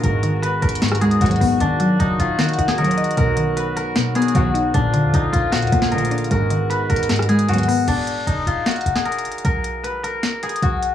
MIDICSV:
0, 0, Header, 1, 7, 480
1, 0, Start_track
1, 0, Key_signature, -6, "minor"
1, 0, Tempo, 392157
1, 43, Time_signature, 4, 2, 24, 8
1, 13399, End_track
2, 0, Start_track
2, 0, Title_t, "Guzheng"
2, 0, Program_c, 0, 107
2, 0, Note_on_c, 0, 63, 86
2, 0, Note_on_c, 0, 66, 93
2, 0, Note_on_c, 0, 68, 69
2, 48, Note_on_c, 0, 70, 84
2, 517, Note_on_c, 0, 71, 102
2, 590, Note_off_c, 0, 70, 0
2, 758, Note_on_c, 0, 70, 81
2, 831, Note_off_c, 0, 71, 0
2, 1233, Note_off_c, 0, 68, 0
2, 1238, Note_on_c, 0, 68, 89
2, 1481, Note_off_c, 0, 66, 0
2, 1486, Note_on_c, 0, 66, 82
2, 1917, Note_off_c, 0, 63, 0
2, 1967, Note_on_c, 0, 62, 96
2, 2441, Note_on_c, 0, 63, 80
2, 2514, Note_off_c, 0, 62, 0
2, 2687, Note_on_c, 0, 65, 77
2, 2760, Note_off_c, 0, 66, 0
2, 2929, Note_on_c, 0, 66, 87
2, 3003, Note_off_c, 0, 65, 0
2, 3273, Note_off_c, 0, 68, 0
2, 3278, Note_on_c, 0, 68, 87
2, 3354, Note_off_c, 0, 70, 0
2, 3400, Note_on_c, 0, 70, 78
2, 3879, Note_off_c, 0, 70, 0
2, 3884, Note_on_c, 0, 70, 108
2, 4361, Note_on_c, 0, 71, 74
2, 4435, Note_off_c, 0, 70, 0
2, 4604, Note_on_c, 0, 70, 90
2, 4678, Note_off_c, 0, 71, 0
2, 5083, Note_off_c, 0, 68, 0
2, 5088, Note_on_c, 0, 68, 84
2, 5324, Note_off_c, 0, 66, 0
2, 5329, Note_on_c, 0, 66, 78
2, 5750, Note_off_c, 0, 63, 0
2, 5801, Note_on_c, 0, 62, 100
2, 6288, Note_on_c, 0, 63, 84
2, 6361, Note_off_c, 0, 62, 0
2, 6519, Note_on_c, 0, 65, 94
2, 6592, Note_off_c, 0, 66, 0
2, 6753, Note_on_c, 0, 66, 97
2, 6826, Note_off_c, 0, 65, 0
2, 7127, Note_off_c, 0, 68, 0
2, 7132, Note_on_c, 0, 68, 69
2, 7201, Note_off_c, 0, 70, 0
2, 7240, Note_on_c, 0, 70, 82
2, 7722, Note_off_c, 0, 70, 0
2, 7727, Note_on_c, 0, 70, 85
2, 8197, Note_on_c, 0, 71, 101
2, 8271, Note_off_c, 0, 70, 0
2, 8439, Note_on_c, 0, 70, 87
2, 8512, Note_off_c, 0, 71, 0
2, 8915, Note_off_c, 0, 68, 0
2, 8920, Note_on_c, 0, 68, 84
2, 9161, Note_off_c, 0, 66, 0
2, 9166, Note_on_c, 0, 66, 80
2, 9597, Note_off_c, 0, 63, 0
2, 9646, Note_on_c, 0, 62, 93
2, 10118, Note_on_c, 0, 63, 81
2, 10192, Note_off_c, 0, 62, 0
2, 10367, Note_on_c, 0, 65, 75
2, 10440, Note_off_c, 0, 66, 0
2, 10609, Note_on_c, 0, 66, 86
2, 10683, Note_off_c, 0, 65, 0
2, 10954, Note_off_c, 0, 68, 0
2, 10959, Note_on_c, 0, 68, 81
2, 11035, Note_off_c, 0, 70, 0
2, 11080, Note_on_c, 0, 70, 77
2, 11559, Note_off_c, 0, 70, 0
2, 11564, Note_on_c, 0, 70, 103
2, 12039, Note_on_c, 0, 71, 73
2, 12112, Note_off_c, 0, 70, 0
2, 12282, Note_on_c, 0, 70, 86
2, 12356, Note_off_c, 0, 71, 0
2, 12761, Note_off_c, 0, 68, 0
2, 12766, Note_on_c, 0, 68, 78
2, 13004, Note_off_c, 0, 66, 0
2, 13009, Note_on_c, 0, 66, 76
2, 13399, Note_off_c, 0, 63, 0
2, 13399, Note_off_c, 0, 66, 0
2, 13399, Note_off_c, 0, 68, 0
2, 13399, Note_off_c, 0, 70, 0
2, 13399, End_track
3, 0, Start_track
3, 0, Title_t, "Brass ensemble"
3, 0, Program_c, 1, 61
3, 42, Note_on_c, 1, 56, 73
3, 42, Note_on_c, 1, 59, 73
3, 42, Note_on_c, 1, 66, 87
3, 43, Note_on_c, 1, 51, 77
3, 1943, Note_off_c, 1, 56, 0
3, 1943, Note_off_c, 1, 59, 0
3, 1963, Note_on_c, 1, 54, 71
3, 1963, Note_on_c, 1, 58, 73
3, 3864, Note_off_c, 1, 58, 0
3, 3883, Note_on_c, 1, 59, 69
3, 5753, Note_off_c, 1, 66, 0
3, 5754, Note_off_c, 1, 51, 0
3, 5765, Note_off_c, 1, 54, 0
3, 5784, Note_off_c, 1, 59, 0
3, 5803, Note_on_c, 1, 58, 71
3, 5804, Note_on_c, 1, 50, 81
3, 5804, Note_on_c, 1, 53, 72
3, 5804, Note_on_c, 1, 65, 87
3, 7704, Note_off_c, 1, 50, 0
3, 7704, Note_off_c, 1, 53, 0
3, 7704, Note_off_c, 1, 58, 0
3, 7704, Note_off_c, 1, 65, 0
3, 7724, Note_on_c, 1, 51, 77
3, 7724, Note_on_c, 1, 56, 72
3, 7725, Note_on_c, 1, 59, 71
3, 7725, Note_on_c, 1, 66, 83
3, 9624, Note_off_c, 1, 51, 0
3, 9624, Note_off_c, 1, 56, 0
3, 9625, Note_off_c, 1, 59, 0
3, 9625, Note_off_c, 1, 66, 0
3, 13399, End_track
4, 0, Start_track
4, 0, Title_t, "Synth pluck"
4, 0, Program_c, 2, 84
4, 42, Note_on_c, 2, 44, 98
4, 282, Note_on_c, 2, 51, 83
4, 987, Note_off_c, 2, 44, 0
4, 1002, Note_on_c, 2, 44, 90
4, 1244, Note_on_c, 2, 56, 89
4, 1469, Note_off_c, 2, 44, 0
4, 1482, Note_off_c, 2, 51, 0
4, 1483, Note_on_c, 2, 44, 85
4, 1723, Note_on_c, 2, 59, 92
4, 1963, Note_off_c, 2, 44, 0
4, 1963, Note_off_c, 2, 59, 0
4, 1964, Note_off_c, 2, 56, 0
4, 1965, Note_on_c, 2, 51, 96
4, 2204, Note_on_c, 2, 54, 86
4, 2908, Note_off_c, 2, 51, 0
4, 2922, Note_on_c, 2, 51, 88
4, 3165, Note_on_c, 2, 63, 85
4, 3389, Note_off_c, 2, 51, 0
4, 3403, Note_off_c, 2, 54, 0
4, 3404, Note_on_c, 2, 51, 89
4, 3641, Note_on_c, 2, 75, 83
4, 3882, Note_off_c, 2, 75, 0
4, 3883, Note_off_c, 2, 51, 0
4, 3884, Note_off_c, 2, 63, 0
4, 3885, Note_on_c, 2, 47, 92
4, 4123, Note_on_c, 2, 51, 84
4, 4829, Note_off_c, 2, 47, 0
4, 4844, Note_on_c, 2, 47, 90
4, 5083, Note_on_c, 2, 59, 86
4, 5309, Note_off_c, 2, 47, 0
4, 5323, Note_off_c, 2, 51, 0
4, 5324, Note_on_c, 2, 47, 83
4, 5558, Note_on_c, 2, 63, 88
4, 5801, Note_off_c, 2, 63, 0
4, 5803, Note_off_c, 2, 47, 0
4, 5803, Note_off_c, 2, 59, 0
4, 5803, Note_on_c, 2, 46, 96
4, 6042, Note_on_c, 2, 50, 84
4, 6749, Note_off_c, 2, 46, 0
4, 6763, Note_on_c, 2, 46, 91
4, 7005, Note_on_c, 2, 58, 81
4, 7229, Note_off_c, 2, 46, 0
4, 7242, Note_off_c, 2, 50, 0
4, 7243, Note_on_c, 2, 46, 79
4, 7481, Note_on_c, 2, 62, 89
4, 7721, Note_on_c, 2, 44, 99
4, 7722, Note_off_c, 2, 62, 0
4, 7723, Note_off_c, 2, 46, 0
4, 7724, Note_off_c, 2, 58, 0
4, 7963, Note_on_c, 2, 51, 82
4, 8669, Note_off_c, 2, 44, 0
4, 8683, Note_on_c, 2, 44, 89
4, 8924, Note_on_c, 2, 56, 88
4, 9149, Note_off_c, 2, 44, 0
4, 9163, Note_off_c, 2, 51, 0
4, 9163, Note_on_c, 2, 44, 88
4, 9402, Note_on_c, 2, 59, 91
4, 9643, Note_off_c, 2, 44, 0
4, 9643, Note_off_c, 2, 56, 0
4, 9643, Note_off_c, 2, 59, 0
4, 13399, End_track
5, 0, Start_track
5, 0, Title_t, "String section"
5, 0, Program_c, 3, 48
5, 1483, Note_on_c, 3, 39, 100
5, 1483, Note_on_c, 3, 47, 96
5, 1483, Note_on_c, 3, 54, 107
5, 1939, Note_off_c, 3, 39, 0
5, 1939, Note_off_c, 3, 47, 0
5, 1939, Note_off_c, 3, 54, 0
5, 3403, Note_on_c, 3, 39, 103
5, 3403, Note_on_c, 3, 46, 100
5, 3403, Note_on_c, 3, 54, 114
5, 3859, Note_off_c, 3, 39, 0
5, 3859, Note_off_c, 3, 46, 0
5, 3859, Note_off_c, 3, 54, 0
5, 5322, Note_on_c, 3, 39, 107
5, 5323, Note_on_c, 3, 47, 103
5, 5323, Note_on_c, 3, 54, 111
5, 5779, Note_off_c, 3, 39, 0
5, 5779, Note_off_c, 3, 47, 0
5, 5779, Note_off_c, 3, 54, 0
5, 7242, Note_on_c, 3, 38, 102
5, 7242, Note_on_c, 3, 46, 100
5, 7242, Note_on_c, 3, 53, 108
5, 7698, Note_off_c, 3, 38, 0
5, 7698, Note_off_c, 3, 53, 0
5, 7699, Note_off_c, 3, 46, 0
5, 9162, Note_on_c, 3, 39, 102
5, 9162, Note_on_c, 3, 47, 98
5, 9162, Note_on_c, 3, 54, 106
5, 9618, Note_off_c, 3, 39, 0
5, 9618, Note_off_c, 3, 54, 0
5, 9619, Note_off_c, 3, 47, 0
5, 13399, End_track
6, 0, Start_track
6, 0, Title_t, "808-style bass"
6, 0, Program_c, 4, 38
6, 43, Note_on_c, 4, 32, 116
6, 734, Note_off_c, 4, 32, 0
6, 763, Note_on_c, 4, 32, 108
6, 1243, Note_on_c, 4, 39, 97
6, 1261, Note_off_c, 4, 32, 0
6, 1471, Note_off_c, 4, 39, 0
6, 1482, Note_on_c, 4, 32, 109
6, 1713, Note_off_c, 4, 32, 0
6, 1723, Note_on_c, 4, 32, 102
6, 1953, Note_off_c, 4, 32, 0
6, 1964, Note_on_c, 4, 27, 113
6, 2424, Note_off_c, 4, 27, 0
6, 2443, Note_on_c, 4, 30, 105
6, 2674, Note_off_c, 4, 30, 0
6, 2684, Note_on_c, 4, 27, 104
6, 3144, Note_off_c, 4, 27, 0
6, 3163, Note_on_c, 4, 27, 101
6, 3643, Note_on_c, 4, 34, 99
6, 3661, Note_off_c, 4, 27, 0
6, 3763, Note_on_c, 4, 27, 99
6, 3781, Note_off_c, 4, 34, 0
6, 3877, Note_off_c, 4, 27, 0
6, 3884, Note_on_c, 4, 35, 117
6, 5274, Note_off_c, 4, 35, 0
6, 5323, Note_on_c, 4, 35, 110
6, 5784, Note_off_c, 4, 35, 0
6, 5804, Note_on_c, 4, 34, 109
6, 6163, Note_on_c, 4, 41, 102
6, 6181, Note_off_c, 4, 34, 0
6, 6277, Note_off_c, 4, 41, 0
6, 6283, Note_on_c, 4, 34, 104
6, 6514, Note_off_c, 4, 34, 0
6, 6523, Note_on_c, 4, 34, 107
6, 6883, Note_on_c, 4, 41, 98
6, 6901, Note_off_c, 4, 34, 0
6, 6997, Note_off_c, 4, 41, 0
6, 7002, Note_on_c, 4, 34, 102
6, 7694, Note_off_c, 4, 34, 0
6, 7723, Note_on_c, 4, 32, 113
6, 8414, Note_off_c, 4, 32, 0
6, 8442, Note_on_c, 4, 32, 106
6, 8683, Note_off_c, 4, 32, 0
6, 9642, Note_on_c, 4, 27, 115
6, 10103, Note_off_c, 4, 27, 0
6, 10122, Note_on_c, 4, 30, 104
6, 10353, Note_off_c, 4, 30, 0
6, 10362, Note_on_c, 4, 27, 99
6, 10823, Note_off_c, 4, 27, 0
6, 10842, Note_on_c, 4, 27, 104
6, 11322, Note_on_c, 4, 34, 98
6, 11341, Note_off_c, 4, 27, 0
6, 11442, Note_on_c, 4, 27, 96
6, 11460, Note_off_c, 4, 34, 0
6, 11556, Note_off_c, 4, 27, 0
6, 11563, Note_on_c, 4, 35, 111
6, 12954, Note_off_c, 4, 35, 0
6, 13003, Note_on_c, 4, 35, 110
6, 13399, Note_off_c, 4, 35, 0
6, 13399, End_track
7, 0, Start_track
7, 0, Title_t, "Drums"
7, 43, Note_on_c, 9, 42, 73
7, 165, Note_off_c, 9, 42, 0
7, 281, Note_on_c, 9, 42, 84
7, 404, Note_off_c, 9, 42, 0
7, 528, Note_on_c, 9, 42, 80
7, 650, Note_off_c, 9, 42, 0
7, 763, Note_on_c, 9, 42, 51
7, 843, Note_off_c, 9, 42, 0
7, 843, Note_on_c, 9, 42, 70
7, 923, Note_off_c, 9, 42, 0
7, 923, Note_on_c, 9, 42, 89
7, 1002, Note_off_c, 9, 42, 0
7, 1002, Note_on_c, 9, 42, 52
7, 1003, Note_on_c, 9, 38, 113
7, 1082, Note_off_c, 9, 42, 0
7, 1082, Note_on_c, 9, 42, 69
7, 1121, Note_on_c, 9, 37, 96
7, 1125, Note_off_c, 9, 38, 0
7, 1162, Note_off_c, 9, 42, 0
7, 1162, Note_on_c, 9, 42, 86
7, 1242, Note_off_c, 9, 42, 0
7, 1242, Note_on_c, 9, 42, 66
7, 1244, Note_off_c, 9, 37, 0
7, 1362, Note_off_c, 9, 42, 0
7, 1362, Note_on_c, 9, 42, 69
7, 1482, Note_off_c, 9, 42, 0
7, 1482, Note_on_c, 9, 42, 69
7, 1542, Note_off_c, 9, 42, 0
7, 1542, Note_on_c, 9, 42, 60
7, 1603, Note_off_c, 9, 42, 0
7, 1603, Note_on_c, 9, 42, 50
7, 1663, Note_off_c, 9, 42, 0
7, 1663, Note_on_c, 9, 42, 42
7, 1730, Note_on_c, 9, 46, 72
7, 1785, Note_off_c, 9, 42, 0
7, 1852, Note_off_c, 9, 46, 0
7, 1963, Note_on_c, 9, 42, 75
7, 2085, Note_off_c, 9, 42, 0
7, 2202, Note_on_c, 9, 42, 82
7, 2324, Note_off_c, 9, 42, 0
7, 2448, Note_on_c, 9, 42, 82
7, 2571, Note_off_c, 9, 42, 0
7, 2690, Note_on_c, 9, 42, 82
7, 2812, Note_off_c, 9, 42, 0
7, 2923, Note_on_c, 9, 42, 81
7, 2924, Note_on_c, 9, 38, 115
7, 2983, Note_off_c, 9, 42, 0
7, 2983, Note_on_c, 9, 42, 71
7, 3043, Note_off_c, 9, 42, 0
7, 3043, Note_on_c, 9, 42, 58
7, 3046, Note_off_c, 9, 38, 0
7, 3103, Note_off_c, 9, 42, 0
7, 3103, Note_on_c, 9, 42, 48
7, 3167, Note_off_c, 9, 42, 0
7, 3167, Note_on_c, 9, 42, 78
7, 3282, Note_on_c, 9, 38, 75
7, 3289, Note_off_c, 9, 42, 0
7, 3402, Note_on_c, 9, 42, 41
7, 3404, Note_off_c, 9, 38, 0
7, 3482, Note_off_c, 9, 42, 0
7, 3482, Note_on_c, 9, 42, 58
7, 3562, Note_off_c, 9, 42, 0
7, 3562, Note_on_c, 9, 42, 73
7, 3643, Note_off_c, 9, 42, 0
7, 3643, Note_on_c, 9, 42, 57
7, 3722, Note_off_c, 9, 42, 0
7, 3722, Note_on_c, 9, 42, 57
7, 3803, Note_off_c, 9, 42, 0
7, 3803, Note_on_c, 9, 42, 54
7, 3883, Note_off_c, 9, 42, 0
7, 3883, Note_on_c, 9, 42, 75
7, 4005, Note_off_c, 9, 42, 0
7, 4121, Note_on_c, 9, 42, 83
7, 4244, Note_off_c, 9, 42, 0
7, 4368, Note_on_c, 9, 42, 81
7, 4490, Note_off_c, 9, 42, 0
7, 4610, Note_on_c, 9, 42, 81
7, 4732, Note_off_c, 9, 42, 0
7, 4842, Note_on_c, 9, 42, 79
7, 4843, Note_on_c, 9, 38, 113
7, 4965, Note_off_c, 9, 42, 0
7, 4966, Note_off_c, 9, 38, 0
7, 5083, Note_on_c, 9, 42, 66
7, 5163, Note_off_c, 9, 42, 0
7, 5163, Note_on_c, 9, 42, 66
7, 5243, Note_off_c, 9, 42, 0
7, 5243, Note_on_c, 9, 42, 68
7, 5324, Note_off_c, 9, 42, 0
7, 5324, Note_on_c, 9, 42, 67
7, 5446, Note_off_c, 9, 42, 0
7, 5570, Note_on_c, 9, 42, 74
7, 5692, Note_off_c, 9, 42, 0
7, 5803, Note_on_c, 9, 42, 76
7, 5925, Note_off_c, 9, 42, 0
7, 6042, Note_on_c, 9, 42, 84
7, 6164, Note_off_c, 9, 42, 0
7, 6288, Note_on_c, 9, 42, 80
7, 6410, Note_off_c, 9, 42, 0
7, 6530, Note_on_c, 9, 42, 84
7, 6652, Note_off_c, 9, 42, 0
7, 6762, Note_on_c, 9, 42, 82
7, 6763, Note_on_c, 9, 38, 115
7, 6823, Note_off_c, 9, 42, 0
7, 6823, Note_on_c, 9, 42, 73
7, 6884, Note_off_c, 9, 42, 0
7, 6884, Note_on_c, 9, 42, 59
7, 6885, Note_off_c, 9, 38, 0
7, 6943, Note_off_c, 9, 42, 0
7, 6943, Note_on_c, 9, 42, 48
7, 7007, Note_off_c, 9, 42, 0
7, 7007, Note_on_c, 9, 42, 79
7, 7123, Note_on_c, 9, 38, 75
7, 7130, Note_off_c, 9, 42, 0
7, 7243, Note_on_c, 9, 42, 42
7, 7246, Note_off_c, 9, 38, 0
7, 7323, Note_off_c, 9, 42, 0
7, 7323, Note_on_c, 9, 42, 56
7, 7403, Note_off_c, 9, 42, 0
7, 7403, Note_on_c, 9, 42, 72
7, 7482, Note_off_c, 9, 42, 0
7, 7482, Note_on_c, 9, 42, 57
7, 7563, Note_off_c, 9, 42, 0
7, 7563, Note_on_c, 9, 42, 57
7, 7642, Note_off_c, 9, 42, 0
7, 7642, Note_on_c, 9, 42, 54
7, 7722, Note_off_c, 9, 42, 0
7, 7722, Note_on_c, 9, 42, 76
7, 7845, Note_off_c, 9, 42, 0
7, 7961, Note_on_c, 9, 42, 79
7, 8083, Note_off_c, 9, 42, 0
7, 8208, Note_on_c, 9, 42, 82
7, 8330, Note_off_c, 9, 42, 0
7, 8443, Note_on_c, 9, 42, 50
7, 8523, Note_off_c, 9, 42, 0
7, 8523, Note_on_c, 9, 42, 68
7, 8603, Note_off_c, 9, 42, 0
7, 8603, Note_on_c, 9, 42, 88
7, 8683, Note_off_c, 9, 42, 0
7, 8683, Note_on_c, 9, 38, 115
7, 8683, Note_on_c, 9, 42, 50
7, 8762, Note_off_c, 9, 42, 0
7, 8762, Note_on_c, 9, 42, 65
7, 8802, Note_on_c, 9, 37, 92
7, 8805, Note_off_c, 9, 38, 0
7, 8843, Note_off_c, 9, 42, 0
7, 8843, Note_on_c, 9, 42, 84
7, 8923, Note_off_c, 9, 42, 0
7, 8923, Note_on_c, 9, 42, 67
7, 8924, Note_off_c, 9, 37, 0
7, 9043, Note_off_c, 9, 42, 0
7, 9043, Note_on_c, 9, 42, 70
7, 9162, Note_off_c, 9, 42, 0
7, 9162, Note_on_c, 9, 42, 69
7, 9223, Note_off_c, 9, 42, 0
7, 9223, Note_on_c, 9, 42, 60
7, 9283, Note_off_c, 9, 42, 0
7, 9283, Note_on_c, 9, 42, 51
7, 9343, Note_off_c, 9, 42, 0
7, 9343, Note_on_c, 9, 42, 42
7, 9409, Note_on_c, 9, 46, 73
7, 9465, Note_off_c, 9, 42, 0
7, 9532, Note_off_c, 9, 46, 0
7, 9643, Note_on_c, 9, 42, 76
7, 9643, Note_on_c, 9, 49, 98
7, 9765, Note_off_c, 9, 49, 0
7, 9766, Note_off_c, 9, 42, 0
7, 9881, Note_on_c, 9, 42, 82
7, 10004, Note_off_c, 9, 42, 0
7, 10128, Note_on_c, 9, 42, 80
7, 10250, Note_off_c, 9, 42, 0
7, 10370, Note_on_c, 9, 42, 79
7, 10492, Note_off_c, 9, 42, 0
7, 10602, Note_on_c, 9, 42, 81
7, 10603, Note_on_c, 9, 38, 107
7, 10663, Note_off_c, 9, 42, 0
7, 10663, Note_on_c, 9, 42, 71
7, 10723, Note_off_c, 9, 42, 0
7, 10723, Note_on_c, 9, 42, 58
7, 10725, Note_off_c, 9, 38, 0
7, 10783, Note_off_c, 9, 42, 0
7, 10783, Note_on_c, 9, 42, 47
7, 10847, Note_off_c, 9, 42, 0
7, 10847, Note_on_c, 9, 42, 76
7, 10963, Note_on_c, 9, 38, 76
7, 10969, Note_off_c, 9, 42, 0
7, 11083, Note_on_c, 9, 42, 42
7, 11085, Note_off_c, 9, 38, 0
7, 11163, Note_off_c, 9, 42, 0
7, 11163, Note_on_c, 9, 42, 55
7, 11243, Note_off_c, 9, 42, 0
7, 11243, Note_on_c, 9, 42, 69
7, 11323, Note_off_c, 9, 42, 0
7, 11323, Note_on_c, 9, 42, 55
7, 11403, Note_off_c, 9, 42, 0
7, 11403, Note_on_c, 9, 42, 55
7, 11483, Note_off_c, 9, 42, 0
7, 11483, Note_on_c, 9, 42, 52
7, 11563, Note_off_c, 9, 42, 0
7, 11563, Note_on_c, 9, 42, 72
7, 11686, Note_off_c, 9, 42, 0
7, 11802, Note_on_c, 9, 42, 79
7, 11924, Note_off_c, 9, 42, 0
7, 12048, Note_on_c, 9, 42, 79
7, 12171, Note_off_c, 9, 42, 0
7, 12291, Note_on_c, 9, 42, 81
7, 12413, Note_off_c, 9, 42, 0
7, 12522, Note_on_c, 9, 42, 78
7, 12523, Note_on_c, 9, 38, 109
7, 12645, Note_off_c, 9, 42, 0
7, 12646, Note_off_c, 9, 38, 0
7, 12763, Note_on_c, 9, 42, 65
7, 12843, Note_off_c, 9, 42, 0
7, 12843, Note_on_c, 9, 42, 66
7, 12923, Note_off_c, 9, 42, 0
7, 12923, Note_on_c, 9, 42, 68
7, 13004, Note_off_c, 9, 42, 0
7, 13004, Note_on_c, 9, 42, 64
7, 13127, Note_off_c, 9, 42, 0
7, 13250, Note_on_c, 9, 42, 72
7, 13372, Note_off_c, 9, 42, 0
7, 13399, End_track
0, 0, End_of_file